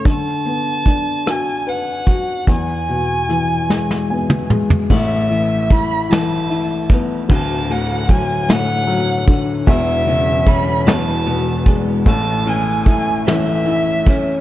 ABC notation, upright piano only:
X:1
M:6/8
L:1/8
Q:3/8=50
K:A
V:1 name="Upright piano"
z6 | z4 g2 | z6 | z6 |
z6 | z6 |]
V:2 name="Upright piano" clef=bass
D, B, D F B F | E,, B,, E, G, B, G, | [A,,,A,,] E, E E, E B, | [D,,,D,,] A,, F, A,, F, D, |
[E,,,E,,] C, C [E,,,E,,] B,, G, | [A,,,A,,] E, E E, E C |]